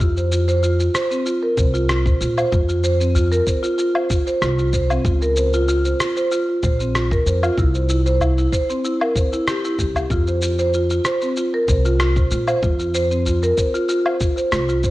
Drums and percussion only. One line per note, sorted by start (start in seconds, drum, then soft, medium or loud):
0.00 kick loud
0.00 shaker soft
0.17 shaker soft
0.32 shaker medium
0.48 shaker soft
0.63 shaker soft
0.80 shaker soft
0.95 cross-stick medium
0.95 shaker medium
1.11 shaker soft
1.26 shaker soft
1.58 kick loud
1.58 udu medium
1.58 shaker medium
1.74 shaker soft
1.89 cross-stick medium
1.89 shaker soft
2.06 kick loud
2.06 udu medium
2.06 shaker soft
2.21 shaker medium
2.38 low woodblock medium
2.38 shaker soft
2.52 kick loud
2.52 shaker soft
2.69 shaker soft
2.84 shaker medium
3.01 shaker soft
3.15 udu medium
3.15 shaker soft
3.32 shaker soft
3.47 kick medium
3.47 shaker medium
3.64 shaker soft
3.78 shaker soft
3.95 low woodblock medium
4.10 kick loud
4.10 shaker medium
4.27 shaker soft
4.42 cross-stick medium
4.42 shaker soft
4.59 shaker soft
4.73 kick medium
4.73 shaker medium
4.90 low woodblock medium
4.90 shaker soft
5.05 kick loud
5.05 shaker soft
5.22 shaker soft
5.36 shaker medium
5.53 shaker soft
5.68 shaker soft
5.85 shaker soft
6.00 cross-stick medium
6.00 shaker medium
6.17 shaker soft
6.31 shaker soft
6.62 kick loud
6.62 udu medium
6.62 shaker medium
6.80 shaker soft
6.95 cross-stick medium
6.95 shaker soft
7.11 kick loud
7.11 udu medium
7.11 shaker soft
7.26 shaker medium
7.43 low woodblock medium
7.43 shaker soft
7.58 kick loud
7.58 shaker soft
7.75 shaker soft
7.89 shaker medium
8.06 shaker soft
8.20 udu medium
8.20 low woodblock medium
8.20 shaker soft
8.38 shaker soft
8.52 kick medium
8.52 shaker medium
8.70 shaker soft
8.85 shaker soft
9.01 low woodblock medium
9.16 kick loud
9.16 shaker medium
9.33 shaker soft
9.48 cross-stick medium
9.48 shaker soft
9.64 shaker soft
9.79 kick medium
9.79 shaker medium
9.95 udu medium
9.95 low woodblock medium
9.95 shaker soft
10.10 kick loud
10.10 shaker soft
10.27 shaker soft
10.42 shaker medium
10.59 shaker soft
10.74 shaker soft
10.90 shaker soft
11.05 cross-stick medium
11.05 shaker medium
11.22 shaker soft
11.37 shaker soft
11.68 kick loud
11.68 udu medium
11.68 shaker medium
11.85 shaker soft
12.00 cross-stick medium
12.00 shaker soft
12.16 kick loud
12.16 udu medium
12.16 shaker soft
12.31 shaker medium
12.48 low woodblock medium
12.48 shaker soft
12.63 kick loud
12.63 shaker soft
12.80 shaker soft
12.95 shaker medium
13.11 shaker soft
13.26 udu medium
13.26 shaker soft
13.43 shaker soft
13.58 kick medium
13.58 shaker medium
13.74 shaker soft
13.89 shaker soft
14.06 low woodblock medium
14.20 kick medium
14.20 shaker medium
14.37 shaker soft
14.52 cross-stick medium
14.52 shaker soft
14.69 shaker soft
14.84 kick medium
14.84 shaker medium